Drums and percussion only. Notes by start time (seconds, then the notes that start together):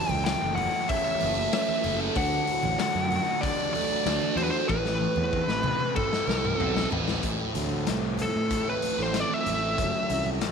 0.09 high conga, low conga
0.26 snare, open hi-hat
0.57 open hi-hat, low conga
0.89 kick, open hi-hat
1.20 open hi-hat, high conga
1.53 snare, open hi-hat
1.69 high conga
1.84 open hi-hat, low conga
2.16 kick, open hi-hat
2.47 open hi-hat
2.63 high conga, low conga
2.79 snare, open hi-hat
3.11 open hi-hat, low conga
3.43 kick, open hi-hat
3.74 open hi-hat, high conga
4.06 snare, open hi-hat
4.22 high conga
4.37 open hi-hat, low conga
4.69 kick, high tom
4.86 snare
5.01 high tom
5.16 high tom, high conga, low conga
5.33 kick
5.48 snare
5.63 mid tom, high conga, low conga
5.80 mid tom
5.96 kick, mid tom
6.13 snare
6.28 snare, high conga
6.45 mid tom
6.60 floor tom
6.75 snare, high conga
6.91 floor tom, low conga
7.08 snare
7.23 kick, closed hi-hat
7.54 closed hi-hat, high conga
7.70 high conga
7.87 snare, closed hi-hat
8.18 closed hi-hat, low conga
8.50 kick, closed hi-hat, high conga
8.82 closed hi-hat
8.98 snare
9.14 snare, closed hi-hat
9.29 high conga
9.46 closed hi-hat, low conga
9.78 kick, closed hi-hat
10.09 closed hi-hat, high conga
10.26 high conga
10.41 snare, closed hi-hat